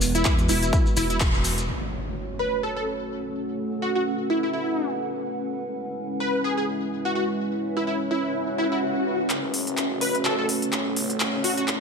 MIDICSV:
0, 0, Header, 1, 9, 480
1, 0, Start_track
1, 0, Key_signature, 3, "minor"
1, 0, Tempo, 476190
1, 1694, Time_signature, 4, 2, 24, 8
1, 11895, End_track
2, 0, Start_track
2, 0, Title_t, "Ambient pad"
2, 0, Program_c, 0, 92
2, 1695, Note_on_c, 0, 61, 65
2, 1870, Note_on_c, 0, 69, 78
2, 2768, Note_on_c, 0, 78, 69
2, 5533, Note_off_c, 0, 69, 0
2, 6032, Note_on_c, 0, 76, 70
2, 6132, Note_on_c, 0, 71, 78
2, 6955, Note_off_c, 0, 78, 0
2, 9837, Note_on_c, 0, 69, 69
2, 9955, Note_on_c, 0, 78, 74
2, 10475, Note_off_c, 0, 76, 0
2, 10921, Note_off_c, 0, 71, 0
2, 11895, Note_off_c, 0, 61, 0
2, 11895, Note_off_c, 0, 69, 0
2, 11895, Note_off_c, 0, 78, 0
2, 11895, End_track
3, 0, Start_track
3, 0, Title_t, "Digital synth lead"
3, 0, Program_c, 1, 84
3, 149, Note_on_c, 1, 64, 89
3, 216, Note_off_c, 1, 64, 0
3, 254, Note_on_c, 1, 64, 74
3, 341, Note_off_c, 1, 64, 0
3, 495, Note_on_c, 1, 64, 92
3, 869, Note_off_c, 1, 64, 0
3, 974, Note_on_c, 1, 64, 88
3, 1060, Note_off_c, 1, 64, 0
3, 1108, Note_on_c, 1, 64, 77
3, 1176, Note_off_c, 1, 64, 0
3, 2412, Note_on_c, 1, 71, 85
3, 2632, Note_off_c, 1, 71, 0
3, 2653, Note_on_c, 1, 69, 83
3, 2740, Note_off_c, 1, 69, 0
3, 2787, Note_on_c, 1, 69, 70
3, 2855, Note_off_c, 1, 69, 0
3, 3852, Note_on_c, 1, 66, 81
3, 3940, Note_off_c, 1, 66, 0
3, 3986, Note_on_c, 1, 66, 73
3, 4055, Note_off_c, 1, 66, 0
3, 4333, Note_on_c, 1, 64, 83
3, 4420, Note_off_c, 1, 64, 0
3, 4467, Note_on_c, 1, 64, 71
3, 4535, Note_off_c, 1, 64, 0
3, 4570, Note_on_c, 1, 64, 86
3, 4947, Note_off_c, 1, 64, 0
3, 6252, Note_on_c, 1, 71, 86
3, 6472, Note_off_c, 1, 71, 0
3, 6494, Note_on_c, 1, 68, 83
3, 6580, Note_off_c, 1, 68, 0
3, 6628, Note_on_c, 1, 68, 73
3, 6695, Note_off_c, 1, 68, 0
3, 7107, Note_on_c, 1, 66, 86
3, 7175, Note_off_c, 1, 66, 0
3, 7210, Note_on_c, 1, 66, 70
3, 7299, Note_off_c, 1, 66, 0
3, 7827, Note_on_c, 1, 64, 84
3, 7895, Note_off_c, 1, 64, 0
3, 7934, Note_on_c, 1, 64, 73
3, 8020, Note_off_c, 1, 64, 0
3, 8173, Note_on_c, 1, 64, 85
3, 8548, Note_off_c, 1, 64, 0
3, 8652, Note_on_c, 1, 64, 87
3, 8739, Note_off_c, 1, 64, 0
3, 8788, Note_on_c, 1, 64, 71
3, 8855, Note_off_c, 1, 64, 0
3, 10092, Note_on_c, 1, 71, 88
3, 10312, Note_off_c, 1, 71, 0
3, 10333, Note_on_c, 1, 69, 86
3, 10420, Note_off_c, 1, 69, 0
3, 10469, Note_on_c, 1, 69, 73
3, 10536, Note_off_c, 1, 69, 0
3, 11532, Note_on_c, 1, 66, 88
3, 11619, Note_off_c, 1, 66, 0
3, 11665, Note_on_c, 1, 66, 73
3, 11734, Note_off_c, 1, 66, 0
3, 11895, End_track
4, 0, Start_track
4, 0, Title_t, "Analog synth pad"
4, 0, Program_c, 2, 89
4, 0, Note_on_c, 2, 56, 83
4, 0, Note_on_c, 2, 59, 76
4, 0, Note_on_c, 2, 66, 76
4, 0, Note_on_c, 2, 71, 90
4, 1655, Note_off_c, 2, 56, 0
4, 1655, Note_off_c, 2, 59, 0
4, 1655, Note_off_c, 2, 71, 0
4, 1675, Note_off_c, 2, 66, 0
4, 1693, Note_on_c, 2, 61, 73
4, 1693, Note_on_c, 2, 73, 85
4, 1694, Note_on_c, 2, 57, 76
4, 1694, Note_on_c, 2, 66, 69
4, 3594, Note_off_c, 2, 73, 0
4, 3613, Note_on_c, 2, 71, 85
4, 5495, Note_off_c, 2, 57, 0
4, 5496, Note_off_c, 2, 66, 0
4, 5536, Note_on_c, 2, 56, 80
4, 5536, Note_on_c, 2, 64, 72
4, 7415, Note_off_c, 2, 71, 0
4, 7455, Note_on_c, 2, 73, 86
4, 9333, Note_off_c, 2, 61, 0
4, 9337, Note_off_c, 2, 56, 0
4, 9337, Note_off_c, 2, 64, 0
4, 9355, Note_off_c, 2, 73, 0
4, 9376, Note_on_c, 2, 61, 74
4, 9376, Note_on_c, 2, 66, 74
4, 9376, Note_on_c, 2, 73, 89
4, 9377, Note_on_c, 2, 57, 80
4, 11276, Note_off_c, 2, 66, 0
4, 11293, Note_on_c, 2, 64, 76
4, 11895, Note_off_c, 2, 57, 0
4, 11895, Note_off_c, 2, 61, 0
4, 11895, Note_off_c, 2, 64, 0
4, 11895, Note_off_c, 2, 73, 0
4, 11895, End_track
5, 0, Start_track
5, 0, Title_t, "Detuned saw bass"
5, 0, Program_c, 3, 39
5, 0, Note_on_c, 3, 28, 97
5, 237, Note_off_c, 3, 28, 0
5, 254, Note_on_c, 3, 40, 96
5, 477, Note_off_c, 3, 40, 0
5, 494, Note_on_c, 3, 28, 94
5, 717, Note_off_c, 3, 28, 0
5, 974, Note_on_c, 3, 28, 95
5, 1328, Note_off_c, 3, 28, 0
5, 1350, Note_on_c, 3, 28, 98
5, 1678, Note_off_c, 3, 28, 0
5, 9374, Note_on_c, 3, 30, 93
5, 9728, Note_off_c, 3, 30, 0
5, 9749, Note_on_c, 3, 30, 90
5, 9968, Note_off_c, 3, 30, 0
5, 9989, Note_on_c, 3, 30, 91
5, 10317, Note_off_c, 3, 30, 0
5, 10813, Note_on_c, 3, 33, 93
5, 11037, Note_off_c, 3, 33, 0
5, 11053, Note_on_c, 3, 33, 95
5, 11407, Note_off_c, 3, 33, 0
5, 11428, Note_on_c, 3, 30, 95
5, 11757, Note_off_c, 3, 30, 0
5, 11774, Note_on_c, 3, 42, 94
5, 11895, Note_off_c, 3, 42, 0
5, 11895, End_track
6, 0, Start_track
6, 0, Title_t, "Impact"
6, 0, Program_c, 4, 103
6, 1694, Note_on_c, 4, 60, 64
6, 3614, Note_off_c, 4, 60, 0
6, 11895, End_track
7, 0, Start_track
7, 0, Title_t, "Riser"
7, 0, Program_c, 5, 103
7, 9373, Note_on_c, 5, 60, 74
7, 11895, Note_off_c, 5, 60, 0
7, 11895, End_track
8, 0, Start_track
8, 0, Title_t, "Swell"
8, 0, Program_c, 6, 103
8, 8414, Note_on_c, 6, 60, 70
8, 9374, Note_off_c, 6, 60, 0
8, 11895, End_track
9, 0, Start_track
9, 0, Title_t, "Drums"
9, 15, Note_on_c, 9, 46, 101
9, 16, Note_on_c, 9, 70, 95
9, 115, Note_off_c, 9, 46, 0
9, 116, Note_off_c, 9, 70, 0
9, 150, Note_on_c, 9, 42, 53
9, 150, Note_on_c, 9, 70, 40
9, 251, Note_off_c, 9, 42, 0
9, 251, Note_off_c, 9, 70, 0
9, 253, Note_on_c, 9, 39, 115
9, 254, Note_on_c, 9, 36, 112
9, 254, Note_on_c, 9, 42, 67
9, 255, Note_on_c, 9, 70, 50
9, 354, Note_off_c, 9, 39, 0
9, 355, Note_off_c, 9, 36, 0
9, 355, Note_off_c, 9, 42, 0
9, 356, Note_off_c, 9, 70, 0
9, 387, Note_on_c, 9, 70, 24
9, 389, Note_on_c, 9, 42, 37
9, 488, Note_off_c, 9, 70, 0
9, 490, Note_off_c, 9, 42, 0
9, 493, Note_on_c, 9, 70, 79
9, 495, Note_on_c, 9, 46, 96
9, 594, Note_off_c, 9, 70, 0
9, 596, Note_off_c, 9, 46, 0
9, 630, Note_on_c, 9, 42, 52
9, 637, Note_on_c, 9, 70, 38
9, 731, Note_off_c, 9, 42, 0
9, 734, Note_on_c, 9, 36, 111
9, 735, Note_on_c, 9, 42, 37
9, 738, Note_off_c, 9, 70, 0
9, 738, Note_on_c, 9, 70, 50
9, 835, Note_off_c, 9, 36, 0
9, 836, Note_off_c, 9, 42, 0
9, 838, Note_off_c, 9, 70, 0
9, 869, Note_on_c, 9, 70, 25
9, 969, Note_off_c, 9, 70, 0
9, 975, Note_on_c, 9, 46, 102
9, 976, Note_on_c, 9, 70, 91
9, 1076, Note_off_c, 9, 46, 0
9, 1077, Note_off_c, 9, 70, 0
9, 1106, Note_on_c, 9, 70, 39
9, 1110, Note_on_c, 9, 42, 54
9, 1206, Note_off_c, 9, 70, 0
9, 1211, Note_off_c, 9, 42, 0
9, 1214, Note_on_c, 9, 36, 111
9, 1215, Note_on_c, 9, 39, 120
9, 1215, Note_on_c, 9, 42, 71
9, 1215, Note_on_c, 9, 70, 52
9, 1315, Note_off_c, 9, 36, 0
9, 1315, Note_off_c, 9, 39, 0
9, 1316, Note_off_c, 9, 42, 0
9, 1316, Note_off_c, 9, 70, 0
9, 1352, Note_on_c, 9, 70, 24
9, 1453, Note_off_c, 9, 70, 0
9, 1454, Note_on_c, 9, 70, 87
9, 1455, Note_on_c, 9, 46, 102
9, 1555, Note_off_c, 9, 70, 0
9, 1556, Note_off_c, 9, 46, 0
9, 1591, Note_on_c, 9, 42, 52
9, 1595, Note_on_c, 9, 70, 37
9, 1691, Note_off_c, 9, 42, 0
9, 1695, Note_off_c, 9, 70, 0
9, 9373, Note_on_c, 9, 39, 46
9, 9373, Note_on_c, 9, 42, 65
9, 9474, Note_off_c, 9, 39, 0
9, 9474, Note_off_c, 9, 42, 0
9, 9613, Note_on_c, 9, 46, 97
9, 9714, Note_off_c, 9, 46, 0
9, 9748, Note_on_c, 9, 42, 49
9, 9849, Note_off_c, 9, 42, 0
9, 9854, Note_on_c, 9, 39, 47
9, 9854, Note_on_c, 9, 42, 64
9, 9954, Note_off_c, 9, 39, 0
9, 9954, Note_off_c, 9, 42, 0
9, 10093, Note_on_c, 9, 46, 94
9, 10193, Note_off_c, 9, 46, 0
9, 10228, Note_on_c, 9, 42, 49
9, 10329, Note_off_c, 9, 42, 0
9, 10333, Note_on_c, 9, 39, 49
9, 10333, Note_on_c, 9, 42, 36
9, 10434, Note_off_c, 9, 39, 0
9, 10434, Note_off_c, 9, 42, 0
9, 10572, Note_on_c, 9, 46, 100
9, 10673, Note_off_c, 9, 46, 0
9, 10708, Note_on_c, 9, 42, 53
9, 10809, Note_off_c, 9, 42, 0
9, 10813, Note_on_c, 9, 39, 54
9, 10813, Note_on_c, 9, 42, 64
9, 10914, Note_off_c, 9, 39, 0
9, 10914, Note_off_c, 9, 42, 0
9, 11052, Note_on_c, 9, 46, 99
9, 11153, Note_off_c, 9, 46, 0
9, 11187, Note_on_c, 9, 42, 50
9, 11288, Note_off_c, 9, 42, 0
9, 11293, Note_on_c, 9, 39, 56
9, 11293, Note_on_c, 9, 42, 64
9, 11393, Note_off_c, 9, 39, 0
9, 11393, Note_off_c, 9, 42, 0
9, 11533, Note_on_c, 9, 46, 105
9, 11634, Note_off_c, 9, 46, 0
9, 11668, Note_on_c, 9, 42, 50
9, 11769, Note_off_c, 9, 42, 0
9, 11773, Note_on_c, 9, 39, 58
9, 11773, Note_on_c, 9, 42, 61
9, 11874, Note_off_c, 9, 39, 0
9, 11874, Note_off_c, 9, 42, 0
9, 11895, End_track
0, 0, End_of_file